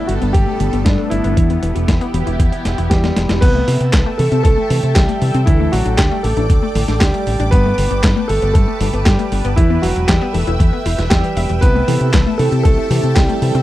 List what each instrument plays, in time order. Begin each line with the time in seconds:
Already playing: analog synth pad G3 A3 B3 D4 A4
0.07 fingered electric bass G1, synth arpeggio sound D3, grand piano F#4, closed hi-hat
0.22 fingered electric bass G1, synth arpeggio sound B3, closed hi-hat
0.33 fingered electric bass G2, synth arpeggio sound D3, grand piano G4, kick, closed hi-hat
0.47 synth arpeggio sound A3
0.60 fingered electric bass G1, synth arpeggio sound D3, closed hi-hat
0.73 fingered electric bass G1, synth arpeggio sound B3, closed hi-hat
0.85 fingered electric bass G2, synth arpeggio sound D3, grand piano D4, kick, snare, closed hi-hat
0.98 synth arpeggio sound A3
1.10 fingered electric bass G1, synth arpeggio sound D3, grand piano E4, closed hi-hat
1.24 fingered electric bass G1, synth arpeggio sound B3, closed hi-hat
1.37 fingered electric bass E2, synth arpeggio sound E3, analog synth pad E4 G4, kick, closed hi-hat
1.50 synth arpeggio sound B3, closed hi-hat
1.62 fingered electric bass E1, synth arpeggio sound E3, closed hi-hat
1.75 fingered electric bass E1, synth arpeggio sound E4, closed hi-hat
1.88 fingered electric bass E2, synth arpeggio sound E3, kick, snare, closed hi-hat
2.01 synth arpeggio sound B3, closed hi-hat
2.14 fingered electric bass E1, synth arpeggio sound E3, closed hi-hat
2.27 fingered electric bass E1, synth arpeggio sound E4, closed hi-hat
2.39 fingered electric bass E2, synth arpeggio sound E3, kick, closed hi-hat
2.52 synth arpeggio sound B3, closed hi-hat
2.65 fingered electric bass E1, synth arpeggio sound E3, snare, closed hi-hat
2.78 fingered electric bass E1, synth arpeggio sound E4, closed hi-hat
2.90 fingered electric bass E2, synth arpeggio sound E3, grand piano G3 G4, kick, snare, closed hi-hat
3.04 synth arpeggio sound B3, snare, closed hi-hat
3.16 fingered electric bass E1, synth arpeggio sound E3, snare, closed hi-hat
3.29 fingered electric bass E1, synth arpeggio sound E4, snare, closed hi-hat
3.41 fingered electric bass C2, synth arpeggio sound E3, grand piano B3 B4, analog synth pad A4 E5 G5 A5, kick, closed hi-hat, crash
3.55 synth arpeggio sound A3
3.68 fingered electric bass C3, synth arpeggio sound E3, open hi-hat
3.80 fingered electric bass C3, synth arpeggio sound C4, closed hi-hat
3.93 fingered electric bass C2, synth arpeggio sound E3, kick, snare, clap, closed hi-hat
4.06 synth arpeggio sound A3
4.18 fingered electric bass C3, synth arpeggio sound E3, grand piano A3 A4, open hi-hat
4.32 fingered electric bass C3, synth arpeggio sound C4, closed hi-hat
4.43 fingered electric bass C2, synth arpeggio sound E3, grand piano A3 A4, kick, closed hi-hat
4.57 synth arpeggio sound A3
4.70 fingered electric bass C3, synth arpeggio sound E3, open hi-hat
4.83 fingered electric bass C3, synth arpeggio sound C4, closed hi-hat
4.95 fingered electric bass C2, synth arpeggio sound E3, grand piano G3 G4, kick, snare, clap, closed hi-hat
5.09 synth arpeggio sound A3, closed hi-hat
5.22 fingered electric bass C3, synth arpeggio sound E3, open hi-hat
5.34 fingered electric bass C3, synth arpeggio sound C4, closed hi-hat
5.46 fingered electric bass D2, synth arpeggio sound D3, grand piano E3 E4, analog synth pad D5 D6, kick, closed hi-hat
5.60 synth arpeggio sound A3
5.72 fingered electric bass A1, synth arpeggio sound D3, grand piano F#3 F#4, open hi-hat
5.85 fingered electric bass A1, synth arpeggio sound D4, closed hi-hat
5.97 fingered electric bass D2, synth arpeggio sound D3, grand piano G3 G4, kick, snare, clap, closed hi-hat
6.11 synth arpeggio sound A3
6.23 fingered electric bass A1, synth arpeggio sound D3, grand piano A3 A4, open hi-hat
6.37 fingered electric bass A1, synth arpeggio sound D4, closed hi-hat
6.50 fingered electric bass D2, synth arpeggio sound D3, kick, closed hi-hat
6.63 synth arpeggio sound A3
6.75 fingered electric bass A1, synth arpeggio sound D3, open hi-hat
6.88 fingered electric bass A1, synth arpeggio sound D4, snare, closed hi-hat
7.00 fingered electric bass D2, synth arpeggio sound D3, grand piano G3 G4, kick, snare, clap, closed hi-hat
7.14 synth arpeggio sound A3, closed hi-hat
7.27 fingered electric bass A1, synth arpeggio sound D3, open hi-hat
7.39 fingered electric bass A1, synth arpeggio sound D4, closed hi-hat
7.51 fingered electric bass G2, synth arpeggio sound D3, grand piano B3 B4, analog synth pad B4 A5, kick, closed hi-hat
7.65 synth arpeggio sound A3
7.78 fingered electric bass G1, synth arpeggio sound D3, open hi-hat
7.91 fingered electric bass G1, synth arpeggio sound B3, closed hi-hat
8.04 fingered electric bass G2, synth arpeggio sound D3, kick, snare, clap, closed hi-hat
8.16 synth arpeggio sound A3
8.28 fingered electric bass G1, synth arpeggio sound D3, grand piano A3 A4, open hi-hat
8.42 fingered electric bass G1, synth arpeggio sound B3, closed hi-hat
8.54 fingered electric bass G2, synth arpeggio sound D3, grand piano A3 A4, kick, closed hi-hat
8.68 synth arpeggio sound A3
8.80 fingered electric bass G1, synth arpeggio sound D3, open hi-hat
8.93 fingered electric bass G1, synth arpeggio sound B3, closed hi-hat
9.05 fingered electric bass G2, synth arpeggio sound D3, grand piano G3 G4, kick, snare, clap, closed hi-hat
9.19 synth arpeggio sound A3, closed hi-hat
9.32 fingered electric bass G1, synth arpeggio sound D3, open hi-hat
9.44 fingered electric bass G1, synth arpeggio sound B3, closed hi-hat
9.56 fingered electric bass E2, synth arpeggio sound E3, grand piano E3 E4, analog synth pad E5 G5 E6, kick, closed hi-hat
9.70 synth arpeggio sound B3
9.82 fingered electric bass E1, synth arpeggio sound E3, grand piano F#3 F#4, open hi-hat
9.96 fingered electric bass E1, synth arpeggio sound E4, closed hi-hat
10.07 fingered electric bass E2, synth arpeggio sound E3, grand piano G3 G4, kick, snare, clap, closed hi-hat
10.21 synth arpeggio sound B3
10.33 fingered electric bass E1, synth arpeggio sound E3, grand piano A3 A4, open hi-hat
10.47 fingered electric bass E1, synth arpeggio sound E4, closed hi-hat
10.60 fingered electric bass E2, synth arpeggio sound E3, kick, closed hi-hat
10.73 synth arpeggio sound B3
10.85 fingered electric bass E1, synth arpeggio sound E4, open hi-hat
10.98 fingered electric bass E1, synth arpeggio sound E4, snare, closed hi-hat
11.10 fingered electric bass E2, grand piano G3 G4, synth arpeggio sound B4, kick, snare, clap, closed hi-hat
11.24 synth arpeggio sound E3, closed hi-hat
11.37 fingered electric bass E1, synth arpeggio sound E5, open hi-hat
11.49 fingered electric bass E1, synth arpeggio sound E3, closed hi-hat
11.61 fingered electric bass C2, synth arpeggio sound E3, grand piano B3 B4, analog synth pad A4 A5, kick, closed hi-hat
11.75 synth arpeggio sound A3
11.88 fingered electric bass C3, synth arpeggio sound E3, tine electric piano C4 E4 G4 A4, open hi-hat
12.01 fingered electric bass C3, synth arpeggio sound C4, closed hi-hat
12.14 fingered electric bass C2, synth arpeggio sound E3, kick, snare, clap, closed hi-hat
12.26 synth arpeggio sound A3
12.38 fingered electric bass C3, synth arpeggio sound E3, grand piano A3 A4, tine electric piano C4 E4 G4 A4, open hi-hat
12.52 fingered electric bass C3, synth arpeggio sound C4, closed hi-hat
12.63 fingered electric bass C2, synth arpeggio sound E3, grand piano A3 A4, kick, closed hi-hat
12.78 synth arpeggio sound A3
12.90 fingered electric bass C3, synth arpeggio sound E3, tine electric piano C4 E4 G4 A4, open hi-hat
13.03 fingered electric bass C3, synth arpeggio sound C4, closed hi-hat
13.15 fingered electric bass C2, synth arpeggio sound E3, grand piano G3 G4, kick, snare, clap, closed hi-hat
13.29 synth arpeggio sound A3, closed hi-hat
13.42 fingered electric bass C3, synth arpeggio sound E3, tine electric piano C4 E4 G4 A4, open hi-hat
13.55 fingered electric bass C3, synth arpeggio sound C4, closed hi-hat